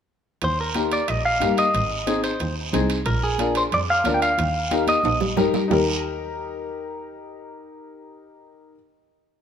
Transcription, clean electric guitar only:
0.44 0.60 C5 medium
0.61 0.90 A#4 medium
0.93 1.08 D5 medium
1.08 1.25 D#5 loud
1.25 1.56 F5 medium
1.59 2.20 D#5 medium
2.24 2.54 C5 medium
3.06 3.23 A#4 medium
3.23 3.54 G#4 medium
3.57 3.62 C5 medium
3.74 3.79 D5 loud
3.90 4.14 F5 loud
4.14 4.22 G5 medium
4.22 4.84 F5 medium
4.89 5.19 D#5 medium

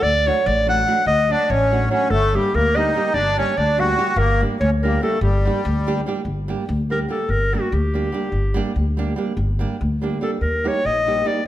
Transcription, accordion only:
1.31 1.50 D4 medium
1.50 1.89 C#4 medium
1.91 2.08 C#4 medium
2.11 2.34 A3 loud
2.34 2.53 G3 medium
2.54 2.76 A#3 medium
2.76 3.13 D#4 medium
3.13 3.37 D4 medium
3.37 3.55 C#4 medium
3.57 3.79 D4 medium
3.79 4.17 F#4 medium
4.18 4.41 A#3 medium
4.60 4.70 C#4 medium
4.83 5.00 A#3 medium
5.01 5.19 A3 medium
5.20 6.01 G3 medium

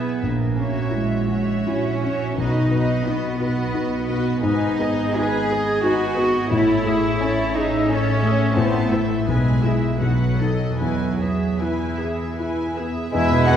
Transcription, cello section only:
0.00 0.25 B3 soft
0.24 0.93 A#3 soft
0.92 1.68 G#3 soft
1.67 2.37 C#4 medium
2.38 3.04 D#4 medium
3.06 4.43 B3 medium
4.42 5.15 D#4 medium
5.17 5.84 G#4 medium
5.84 6.51 F#4 medium
6.50 7.52 E4 medium
7.54 7.89 D#4 medium
7.88 8.57 C#4 medium
8.56 8.91 B3 medium
8.91 9.27 A3 medium
9.26 9.98 G#3 medium
10.00 10.76 F#3 medium
10.78 11.57 F#3 medium
11.58 12.77 E3 soft
13.13 13.57 E2 medium

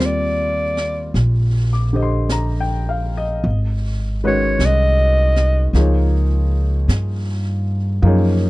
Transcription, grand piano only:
0.00 3.43 G3 soft
0.00 3.44 C4 soft
0.00 3.45 F4 soft
0.00 3.47 A#4 soft
0.00 3.48 D5 soft
1.73 2.08 D6 soft
1.93 3.44 D3 soft
1.93 3.45 G4 soft
1.93 3.45 C5 soft
1.93 3.16 D#5 soft
2.03 2.42 C6 soft
2.32 2.86 A#5 soft
2.60 3.10 G5 medium
2.89 3.23 F5 soft
3.17 3.57 D#5 medium
4.24 5.74 D#3 soft
4.24 5.75 G#3 soft
4.24 5.75 C#4 soft
4.24 5.75 F#4 soft
4.24 5.75 B4 medium
5.75 8.01 F3 soft
5.75 8.02 A#3 soft
5.75 8.03 D#4 soft
5.75 8.04 G#4 soft
5.75 8.04 C#5 medium
8.02 8.50 F3 medium
8.02 8.50 A#3 soft
8.02 8.50 D#4 medium
8.02 8.50 G#4 soft
8.07 8.50 C#4 medium

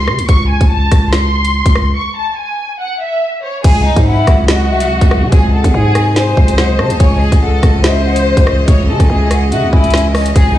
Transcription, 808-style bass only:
0.08 0.20 C#3 loud
0.19 0.28 C#2 loud
0.29 0.60 C#2 loud
0.61 0.90 C#2 loud
0.92 1.63 C#2 loud
1.66 1.95 C#2 loud
3.64 3.87 C#2 loud
3.85 3.96 C2 loud
3.96 4.26 G#2 loud
4.27 4.71 C#2 loud
4.69 4.87 C2 loud
4.85 5.01 C#2 loud
5.01 5.24 C#2 loud
5.22 5.32 C#3 loud
5.32 5.63 C#2 loud
5.64 5.74 E2 loud
5.74 6.35 G#2 loud
6.37 6.81 C#2 loud
6.79 6.92 C#3 loud
6.90 7.00 C#2 loud
7.00 7.31 C#2 loud
7.32 7.62 C#2 loud
7.63 8.34 C#2 loud
8.37 8.67 C#2 loud
8.68 8.90 C#2 loud
8.89 8.99 C#3 loud
9.00 9.09 C#2 loud
9.10 9.53 C#2 loud
9.52 9.64 C#3 loud
9.63 9.72 C#2 loud
9.73 10.33 C#2 loud
10.36 10.58 C#2 loud

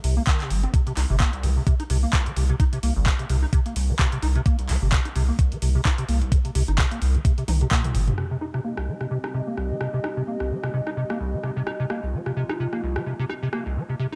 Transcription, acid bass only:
0.04 0.15 C3 medium
0.17 0.23 A#3 loud
0.27 0.42 D#3 medium
0.40 0.52 C3 medium
0.50 0.61 G3 medium
0.63 0.72 C4 loud
0.74 0.81 C3 medium
0.87 0.92 C3 loud
0.97 1.01 D#4 loud
1.10 1.16 C3 loud
1.20 1.31 A#3 medium
1.33 1.45 C2 medium
1.43 1.51 G3 loud
1.56 1.62 C3 medium
1.67 1.74 C3 loud
1.80 1.83 D#4 loud
1.90 1.97 C3 loud
2.03 2.11 A#3 medium
2.13 2.28 C2 medium
2.26 2.32 G3 loud
2.36 2.44 C3 medium
2.49 2.55 C3 loud
2.60 2.64 D#4 medium
2.73 2.78 C3 loud
2.83 2.94 A#3 medium
2.96 3.08 C2 medium
3.06 3.13 G3 medium
3.19 3.25 C3 medium
3.30 3.37 C3 loud
3.43 3.46 D#4 loud
3.53 3.60 C3 loud
3.66 3.74 A#3 medium
3.76 3.91 C2 medium
3.89 3.95 G3 loud
3.99 4.06 C3 medium
4.12 4.18 C3 loud
4.23 4.27 D#4 loud
4.36 4.41 C3 loud
4.46 4.57 A#3 medium
4.59 4.71 C2 medium
4.69 4.76 G3 loud
4.82 4.88 C3 medium
4.92 4.99 C3 loud
5.05 5.09 D#4 loud
5.16 5.23 C3 loud
5.29 5.37 A#3 medium
5.39 5.53 C2 medium
5.52 5.57 G3 loud
5.62 5.69 C3 medium
5.75 5.81 C3 loud
5.85 5.90 D#4 loud
5.98 6.04 C3 loud
6.09 6.19 A#3 medium
6.22 6.33 C2 medium
6.32 6.39 G3 loud
6.45 6.51 C3 medium
6.55 6.62 C3 loud
6.68 6.72 D#4 loud
6.78 6.86 C3 loud
6.91 7.00 A#3 medium
7.02 7.16 C2 medium
7.15 7.20 G3 loud
7.25 7.32 C3 medium
7.38 7.44 C3 loud
7.48 7.52 D#4 loud
7.61 7.67 C3 loud
7.72 7.82 A#3 medium
7.84 7.96 C2 medium
7.95 8.02 G3 loud
8.08 8.13 C3 medium
8.18 8.25 C3 medium
8.31 8.37 C3 medium
8.41 8.45 D#4 loud
8.54 8.60 C3 loud
8.64 8.75 A#3 medium
8.78 8.89 C2 medium
8.88 8.95 G3 medium
9.01 9.06 C3 medium
9.11 9.18 C3 medium
9.24 9.27 D#4 loud
9.34 9.41 C3 loud
9.47 9.56 A#3 medium
9.57 9.72 C2 medium
9.70 9.76 G3 loud
9.81 9.88 C3 medium
9.94 9.99 C3 loud
10.04 10.08 D#4 medium
10.17 10.23 C3 loud
10.27 10.38 A#3 medium
10.40 10.52 C2 medium
10.51 10.58 G3 medium
10.64 10.69 C3 medium
10.74 10.81 C3 loud
10.87 10.90 D#4 loud
10.97 11.04 C3 medium
11.10 11.18 A#3 medium
11.20 11.35 C2 medium
11.33 11.39 G3 medium
11.43 11.51 C3 medium
11.56 11.62 C3 loud
11.67 11.71 D#4 medium
11.80 11.85 C3 loud
11.90 12.01 A#3 medium
12.03 12.15 C2 medium
12.13 12.20 G3 loud
12.26 12.32 C3 medium
12.37 12.44 C3 loud
12.49 12.53 D#4 loud
12.60 12.67 C3 loud
12.73 12.81 A#3 medium
12.83 12.98 C2 medium
12.96 13.02 G3 medium
13.06 13.13 C3 medium
13.19 13.25 C3 loud
13.30 13.34 D#4 loud
13.43 13.48 C3 loud
13.53 13.64 A#3 medium
13.66 13.78 C2 medium
13.76 13.83 G3 loud
13.89 13.95 C3 medium
13.99 14.07 C3 medium

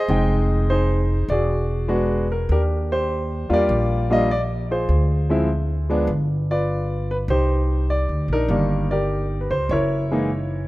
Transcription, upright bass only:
0.08 1.25 F1 medium
1.28 2.45 E1 medium
2.49 3.46 D#2 medium
3.50 3.68 E2 medium
3.69 4.85 A#1 medium
4.89 6.05 D2 medium
6.07 7.24 G1 loud
7.28 8.05 C2 medium
8.09 8.28 D2 medium
8.28 8.47 A#1 medium
8.49 9.46 G1 medium
9.50 9.68 C#2 medium
9.69 10.68 F#1 medium

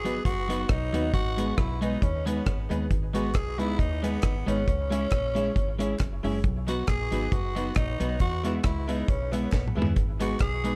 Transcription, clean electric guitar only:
0.05 0.20 F#3 medium
0.05 0.20 B3 medium
0.05 0.20 D#4 medium
0.05 0.21 F#4 medium
0.48 0.64 F#3 medium
0.48 0.64 B3 medium
0.48 0.65 D#4 medium
0.48 0.65 F#4 medium
0.93 1.08 F#3 medium
0.93 1.09 B3 medium
0.93 1.09 D#4 medium
0.93 1.09 F#4 medium
1.37 1.52 G#3 medium
1.37 1.53 B3 medium
1.37 1.53 D#4 medium
1.37 1.54 G#4 medium
1.81 1.97 G#3 medium
1.81 1.97 B3 medium
1.81 1.97 D#4 medium
1.81 1.98 G#4 medium
2.26 2.41 G#3 medium
2.26 2.41 B3 medium
2.26 2.42 D#4 medium
2.26 2.42 G#4 medium
2.70 2.85 G#3 medium
2.70 2.86 B3 medium
2.70 2.86 D#4 loud
2.70 2.86 G#4 medium
3.14 3.29 G#3 medium
3.14 3.29 B3 medium
3.14 3.30 D#4 medium
3.14 3.30 G#4 medium
3.58 3.74 G#3 medium
3.58 3.74 B3 medium
3.58 3.74 D#4 medium
3.58 3.75 G#4 medium
4.03 4.18 G#3 medium
4.03 4.18 B3 medium
4.03 4.19 D#4 medium
4.03 4.19 G#4 medium
4.46 4.62 G#3 medium
4.46 4.62 B3 medium
4.46 4.62 D#4 loud
4.46 4.63 G#4 loud
4.90 5.06 G#3 medium
4.90 5.06 C#4 medium
4.90 5.07 E4 loud
4.90 5.07 G#4 loud
5.35 5.50 G#3 medium
5.35 5.50 C#4 medium
5.35 5.51 E4 medium
5.35 5.51 G#4 medium
5.79 5.94 G#3 medium
5.79 5.94 C#4 medium
5.79 5.95 E4 medium
5.79 5.95 G#4 medium
6.24 6.39 G#3 medium
6.24 6.39 C#4 medium
6.24 6.39 E4 loud
6.24 6.39 G#4 loud
6.68 6.83 F#3 medium
6.68 6.83 B3 medium
6.68 6.83 D#4 medium
6.68 6.84 F#4 medium
7.11 7.27 F#3 medium
7.11 7.27 B3 medium
7.11 7.27 D#4 medium
7.11 7.27 F#4 medium
7.56 7.71 F#3 medium
7.56 7.71 B3 medium
7.56 7.71 D#4 medium
7.56 7.72 F#4 medium
8.00 8.15 F#3 medium
8.00 8.15 B3 medium
8.00 8.15 D#4 medium
8.00 8.16 F#4 medium
8.44 8.59 G#3 medium
8.44 8.59 B3 medium
8.44 8.60 E4 medium
8.44 8.60 G#4 loud
8.88 9.03 G#3 medium
8.88 9.03 B3 medium
8.88 9.04 E4 medium
8.88 9.04 G#4 medium
9.32 9.47 G#3 medium
9.32 9.47 B3 medium
9.32 9.48 E4 medium
9.32 9.48 G#4 medium
9.76 9.91 G#3 medium
9.76 9.92 B3 medium
9.76 9.92 E4 medium
9.76 9.92 G#4 medium
10.20 10.35 G#3 medium
10.20 10.35 B3 medium
10.20 10.36 D#4 medium
10.20 10.36 G#4 medium
10.64 10.76 G#3 medium
10.64 10.76 B3 medium
10.64 10.76 D#4 medium
10.64 10.76 G#4 medium

